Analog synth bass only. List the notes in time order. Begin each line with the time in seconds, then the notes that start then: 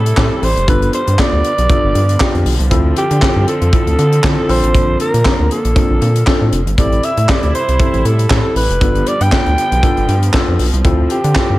Already playing: A2
0.17 A2
0.42 A1
0.56 F1
0.68 G1
1.07 G2
1.33 D2
1.58 B1
1.84 G1
1.95 G2
2.34 F2
2.45 B1
2.60 C2
2.71 D2
3.11 D3
3.36 G2
3.61 F2
3.87 D2
3.98 D3
4.24 D3
4.49 A#1
4.63 A1
4.74 A#1
5.14 A#2
5.39 D2
5.65 A#1
5.90 A#1
6.02 A#2
6.41 A2
6.52 F1
6.66 G1
6.78 A1
7.17 A2
7.43 D2
7.68 C2
7.93 A1
8.05 A2
8.31 A2
8.55 A1
8.69 F1
8.81 G1
9.21 G2
9.46 D2
9.72 B1
9.97 G1
10.08 G2
10.48 F2
10.59 B1
10.73 C2
10.85 D2
11.24 D3
11.50 G2